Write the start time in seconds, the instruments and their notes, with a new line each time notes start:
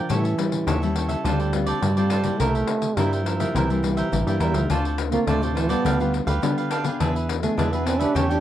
Already playing: trombone F3
0.09 nylon-string guitar A2 G3 C#4 E4, analog synth bass A2, trombone E3, cavaquinho G4 A4 C#5 E5, pandeiro
0.24 cavaquinho A4 C#5 E5, pandeiro
0.38 nylon-string guitar G3 C#4 E4, muted cavaquinho stroke, pandeiro
0.52 pandeiro
0.67 analog synth bass D#2, cavaquinho G4 A4 C#5 E5, pandeiro
0.82 nylon-string guitar G3 C#4 E4, cavaquinho A4 C#5 E5, pandeiro
0.96 cavaquinho G4 A4 C#5 E5, pandeiro
1.09 cavaquinho A4 C#5 E5, pandeiro
1.24 analog synth bass D2, nylon-string guitar D3 G3 C4 F4, trombone G3, cavaquinho F4 A4 C5 D5, pandeiro
1.39 cavaquinho A4 C5 D5, pandeiro
1.53 nylon-string guitar G3 C4 F4, muted cavaquinho stroke, pandeiro
1.67 cavaquinho A4 C5 D5, pandeiro
1.82 analog synth bass G2, nylon-string guitar A2, trombone G3, pandeiro
1.97 nylon-string guitar G3 C4 F4, cavaquinho A4 C5 D5, pandeiro
2.10 cavaquinho F4 A4 C5 D5, pandeiro
2.24 nylon-string guitar G3 A#3 E4, cavaquinho A4 C5 D5, pandeiro
2.39 analog synth bass C2, nylon-string guitar C3, trombone A3, cavaquinho E4 A#4 C5 E5, pandeiro
2.55 cavaquinho A#4 C5 E5, pandeiro
2.67 muted cavaquinho stroke, pandeiro
2.82 pandeiro
2.97 analog synth bass G2, nylon-string guitar G2 G3 A#3 E4, trombone G3, cavaquinho E4 A#4 C5 E5, pandeiro
3.12 cavaquinho A#4 C5 E5, pandeiro
3.25 trombone F3, cavaquinho E4 A#4 C5 E5, pandeiro
3.40 nylon-string guitar G3 A#3 E4, cavaquinho A#4 C5 E5, pandeiro
3.54 analog synth bass C2, nylon-string guitar C3, trombone E3, cavaquinho E4 A#4 C5 E5, pandeiro
3.70 nylon-string guitar G3 A#3 E4, cavaquinho A#4 C5 E5, pandeiro
3.83 nylon-string guitar G3 A#3 E4, muted cavaquinho stroke, pandeiro
3.97 cavaquinho A#4 C5 E5, pandeiro
4.12 analog synth bass A1, nylon-string guitar G2 G3 A#3 E4, trombone E3, pandeiro
4.27 analog synth bass G2, nylon-string guitar G3 A#3 E4, cavaquinho A#4 C5 E5, pandeiro
4.40 analog synth bass E2, trombone G3, cavaquinho E4 A#4 C5 E5, pandeiro
4.54 analog synth bass D2, cavaquinho A#4 C5 E5, pandeiro
4.70 analog synth bass D2, nylon-string guitar D3 A3 C4 F4, cavaquinho F4 A4 C5 D5, pandeiro
4.85 cavaquinho A4 C5 D5, pandeiro
4.98 muted cavaquinho stroke, pandeiro
5.11 nylon-string guitar A3 C4 F4, trombone A#3, pandeiro
5.27 analog synth bass D2, nylon-string guitar A2, trombone A3, cavaquinho F4 A4 C5 D5, pandeiro
5.42 trombone C3, nylon-string guitar A3 C4 F4, cavaquinho A4 C5 D5, pandeiro
5.54 trombone E3, cavaquinho F4 A4 C5 D5, pandeiro
5.69 nylon-string guitar G3 B3 F4, trombone B3, cavaquinho A4 C5 D5, pandeiro
5.84 analog synth bass D2, nylon-string guitar D3, cavaquinho D4 G4 B4 F5, pandeiro
5.99 nylon-string guitar G3 B3 F4, cavaquinho G4 B4 F5, pandeiro
6.13 muted cavaquinho stroke, pandeiro
6.27 analog synth bass D2, cavaquinho G4 B4 F5, pandeiro
6.42 nylon-string guitar D3 G3 B3 F4, analog synth bass D3, pandeiro
6.58 cavaquinho G4 B4 F5, pandeiro
6.71 cavaquinho D4 G4 B4 F5, pandeiro
6.84 nylon-string guitar B3 D4 G#4, cavaquinho G4 B4 F5, pandeiro
7.00 analog synth bass E2, nylon-string guitar E3, cavaquinho D4 G#4 B4 E5, pandeiro
7.15 cavaquinho G#4 B4 E5, pandeiro
7.29 muted cavaquinho stroke, pandeiro
7.41 trombone A3, nylon-string guitar B3 D4 G#4, pandeiro
7.57 analog synth bass E2, nylon-string guitar B2, trombone G#3, cavaquinho D4 G#4 B4 E5, pandeiro
7.72 trombone B3, nylon-string guitar B3 D4 G#4, cavaquinho G#4 B4 E5, pandeiro
7.85 trombone C4, cavaquinho D4 G#4 B4 E5, pandeiro
7.99 nylon-string guitar A3 C#4 G4, trombone D4, cavaquinho G#4 B4 E5, pandeiro
8.15 analog synth bass E2, nylon-string guitar E3, trombone C#4, cavaquinho G4 A4 C#5 G5, pandeiro
8.29 nylon-string guitar A3 C#4 G4, trombone D4, cavaquinho A4 C#5 G5, pandeiro